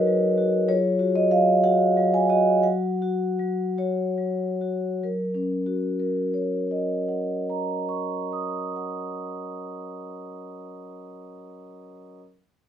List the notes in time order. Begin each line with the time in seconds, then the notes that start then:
Already playing: F#3 D#4 F#4 G#4 A#4 B4 C#5 D#5
0.07 F#3
0.38 F#4
0.68 F#3 F4 G#4 C#5
0.99 F#4
1.16 D#5
1.31 F#3 F5
1.64 F#4 F#5
1.97 F#3
2.14 G#5
2.29 F#4 D#5
2.63 F#3 F#5
3.02 F#4
3.39 F#3
3.78 F#4 C#5
4.18 F#3
4.61 F#4
5.03 F#3 A#4
5.34 C#4
5.66 F#4
6.00 A#4
6.34 C#5
6.71 D#5
7.08 F#5
7.50 A#5
7.89 C#6
8.33 D#6
8.76 F#5